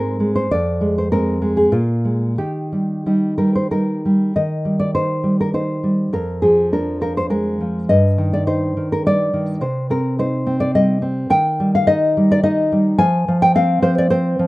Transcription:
Already playing: G#2 G#3 C4 A#4
0.20 G#3
0.36 C5
0.51 F2 D5
0.81 G#3
0.98 C5
1.12 G#3 C4 A#4
1.42 G#3
1.57 G#4
1.72 A#2 F4
2.05 G#3
2.38 D#3 G4
2.72 G3
3.06 G3 D#4
3.38 G3 A#4
3.55 C5
3.71 G3 D#4 A#4
4.05 G3
4.36 D#3 D#5
4.65 G3
4.79 D5
4.95 D#4 C5
5.24 G3
5.41 A#4
5.54 D#4 C5
5.84 G3
6.13 F2 A#4
6.42 F3 G#4
6.72 D4 A#4
7.01 F3 A#4
7.17 C5
7.30 G#3 A#4
7.61 F3
7.89 G2 D#5
8.18 D#3
8.33 D5
8.47 D#4 C5
8.77 D#3
8.92 A#4
9.06 G3 D5
9.34 D#3
9.61 C3 C5
9.90 C4 A#4
10.19 D#4 C5
10.46 C4
10.60 D5
10.75 G3 D#5
11.02 C4
11.30 D#3 G5
11.60 G3
11.75 F5
11.87 D#4 D#5
12.17 G3
12.32 D5
12.43 D#4 D#5
12.72 G3
12.98 F3 G#5
13.28 F3
13.42 G5
13.55 C4 F5
13.82 F3 C5
13.98 D5
14.10 C4 C5
14.39 F3

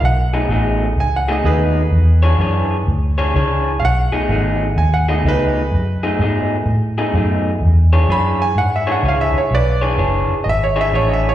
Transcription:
0.00 B1 F5
0.05 F#5
0.33 B2 A3 D#4 G#4
0.49 A1 B2 A3 D#4 G#4
0.96 C#2 G#5
1.16 F#5
1.28 B2 A3 D#4 G#4 D#5
1.44 D#2 B2 A3 D#4 G#4 B4
1.91 E2
2.23 E3 D4 G#4 C#5
2.39 F#2 E3 D4 G#4 C#5
2.87 D2
3.18 E3 D4 G#4 C#5
3.34 C#2 E3 D4 G#4 C#5
3.80 B1 F5
3.85 F#5
4.12 B2 A3 D#4 G#4
4.29 G#1 B2 A3 D#4 G#4
4.76 D#2 G#5
4.94 F#5
5.08 B2 A3 D#4 G#4 D#5
5.24 C#2 B2 A3 D#4 G#4
5.28 B4
5.72 F#2
6.03 B2 A3 D#4 G#4
6.19 G#2 B2 A3 D#4 G#4
6.66 A2
6.98 B2 A3 D#4 G#4
7.13 F#2 B2 A3 D#4 G#4
7.61 E2
7.93 E3 D4 G#4 C#5
8.09 F#2 E3 D4 G#4 C#5 B5
8.42 G#5
8.56 G#2 F#5
8.76 E5
8.87 E3 D4 G#4 C#5
8.92 F#5
9.03 C#2 E3 D4 G#4 C#5
9.08 F5
9.21 E5
9.34 muted fingered electric bass stroke
9.38 C#5
9.51 B1 B4
9.55 D5
9.81 E3 D4 G#4 C#5
9.97 F#1 E3 D4 G#4 C#5
10.28 muted fingered electric bass stroke
10.44 G#1 D#5
10.49 E5
10.64 C#5
10.76 E3 D4 G#4 C#5 D#5
10.81 E5
10.92 A1 E3 D4 G#4 C#5
11.09 D#5
11.13 E5
11.29 C#5

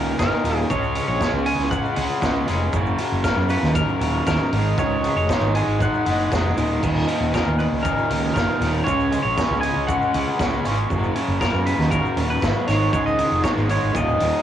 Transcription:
Already playing: C#2 D#2 A#2 D#3 A#4
0.19 F#1 D#2 A#2 D#3 A#4, kick, snare, shaker
0.44 D#1 D#2 A#2 D#3, snare, open hi-hat, shaker
0.70 C#2 C#3 G#3 C#4 C#5, kick, shaker
0.83 shaker
0.95 C#3 G#3 C#4, open hi-hat, shaker
1.08 A#1 C#5
1.21 C#3 G#3 C#4, kick, snare, shaker
1.33 C#2
1.46 C#3 G#3 C#4 G#5, open hi-hat, shaker
1.59 C#2, snare
1.71 C#3 G#3 C#4 F#5, kick, shaker
1.85 shaker
1.96 C#2 C#3 G#3 C#4, open hi-hat, shaker
2.21 C#2 C#3 G#3 C#4, kick, snare, shaker
2.47 F1 C#3 G#3 C#4, snare, open hi-hat, shaker
2.73 F#1 F#2 C#3 F#3, kick, shaker
2.86 shaker
2.99 F#2 C#3 F#3, open hi-hat, shaker
3.12 F#1
3.24 F#2 C#3 F#3 A#4, kick, snare, shaker
3.37 F#2
3.49 F#2 C#3 F#3 B4, open hi-hat, shaker
3.63 D#2, snare
3.74 F#2 C#3 F#3 A#4, kick, shaker
3.88 shaker
4.00 D#1 F#2 C#3 F#3, open hi-hat, shaker
4.27 D#2 F#2 C#3 F#3 A#4, kick, snare, shaker
4.52 G#1 G#2 D#3 G#3, open hi-hat
4.78 C#2 G#2 D#3 G#3 C#5, kick, shaker
5.03 G#2 D#3 G#3, open hi-hat, shaker
5.16 F1 C#5, shaker
5.29 G#2 D#3 G#3, kick, snare, shaker
5.41 G#1
5.54 G#2 D#3 G#3 G#5, open hi-hat, shaker
5.67 G#1, shaker
5.80 G#2 D#3 G#3 F#5, kick, shaker
5.94 shaker
6.06 F#1 G#2 D#3 G#3, open hi-hat, shaker
6.20 shaker
6.31 F1 G#2 D#3 G#3, kick, snare, shaker
6.45 shaker
6.56 D#1 G#2 D#3 G#3, open hi-hat, shaker
6.81 D#1 D#2 A#2 D#3, kick, crash, shaker
6.96 shaker
7.07 D#2 A#2 D#3, open hi-hat, shaker
7.20 D#1
7.32 D#2 A#2 D#3 A#4, kick, snare, shaker
7.46 D#2
7.58 D#2 A#2 D#3 B4, open hi-hat, shaker
7.72 C#2
7.83 D#2 A#2 D#3 A#4, kick, shaker
7.98 shaker
8.09 C#2 D#2 A#2 D#3, open hi-hat, shaker
8.34 F#1 D#2 A#2 D#3 A#4, kick, snare, shaker
8.60 D#1 D#2 A#2 D#3, snare, open hi-hat, shaker
8.84 C#2 C#3 G#3 C#4 C#5, kick, shaker
9.00 shaker
9.11 C#3 G#3 C#4, open hi-hat, shaker
9.23 A#1 C#5
9.37 C#3 G#3 C#4, kick, snare, shaker
9.50 C#2
9.61 C#3 G#3 C#4 G#5, open hi-hat, shaker
9.76 C#2
9.87 C#3 G#3 C#4 F#5, kick, shaker
10.02 shaker
10.14 C#2 C#3 G#3 C#4, open hi-hat, shaker
10.39 C#2 C#3 G#3 C#4, kick, snare, shaker
10.65 G#1 C#3 G#3 C#4, snare, open hi-hat, shaker
10.89 F#1 F#2 C#3 F#3, kick, shaker
11.03 shaker
11.15 F#2 C#3 F#3, open hi-hat, shaker
11.28 F#1
11.41 F#2 C#3 F#3 A#4, kick, snare, shaker
11.53 F#2
11.66 F#2 C#3 F#3 B4, open hi-hat, shaker
11.79 D#2, snare
11.91 F#2 C#3 F#3 A#4, kick, shaker
12.05 shaker
12.17 D#1 F#2 C#3 F#3, open hi-hat, shaker
12.30 B4
12.42 G#1 F#2 C#3 F#3, kick, snare, shaker
12.67 G#1 G#2 D#3 G#3 C#5, snare, open hi-hat, shaker
12.92 C#2 G#2 D#3 G#3 C#5, kick, shaker
13.06 D#5, shaker
13.18 G#2 D#3 G#3, open hi-hat, shaker
13.32 F1, shaker
13.43 G#2 D#3 G#3 C#5, kick, snare, shaker
13.57 G#1, shaker
13.69 G#2 D#3 G#3 C#5, open hi-hat, shaker
13.83 G#1, shaker
13.93 D#1 D#2 A#2 D#3 D#5, kick, shaker
14.08 shaker
14.18 D#1 D#2 A#2 D#3, open hi-hat, shaker
14.34 shaker

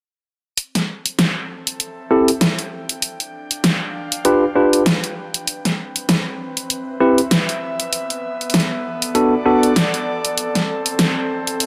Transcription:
0.57 C4, closed hi-hat
0.75 snare, closed hi-hat
0.91 A4
1.06 closed hi-hat
1.19 snare, closed hi-hat
1.67 E5 G5, closed hi-hat
1.80 closed hi-hat
2.11 C4 E4 G4 A4
2.28 closed hi-hat
2.41 snare, closed hi-hat
2.59 closed hi-hat
2.89 closed hi-hat
3.02 D4, closed hi-hat
3.20 closed hi-hat
3.39 F5
3.51 closed hi-hat
3.64 snare, closed hi-hat
3.80 B4
4.12 closed hi-hat
4.25 D4 F4 G4 B4, closed hi-hat
4.56 D4 F4 G4 B4
4.73 closed hi-hat
4.86 snare, closed hi-hat
5.04 closed hi-hat
5.34 closed hi-hat
5.47 C4, closed hi-hat
5.65 snare, closed hi-hat
5.96 closed hi-hat
6.09 snare, closed hi-hat
6.57 E5, closed hi-hat
6.70 closed hi-hat
7.00 C4 E4 G4 B4
7.18 closed hi-hat
7.31 snare, closed hi-hat
7.49 closed hi-hat
7.80 closed hi-hat
7.93 B3, closed hi-hat
8.10 closed hi-hat
8.41 closed hi-hat
8.50 closed hi-hat
8.54 snare, closed hi-hat
8.60 A4, closed hi-hat
9.00 D5, closed hi-hat
9.05 F#5
9.15 B3 D4 F#4 A4, closed hi-hat
9.46 B3 D4 F#4 A4
9.63 closed hi-hat
9.76 snare, closed hi-hat
9.94 closed hi-hat
10.25 closed hi-hat
10.38 C4, closed hi-hat
10.55 snare, closed hi-hat
10.86 closed hi-hat
10.99 snare, closed hi-hat
11.47 E5 G5, closed hi-hat
11.60 closed hi-hat

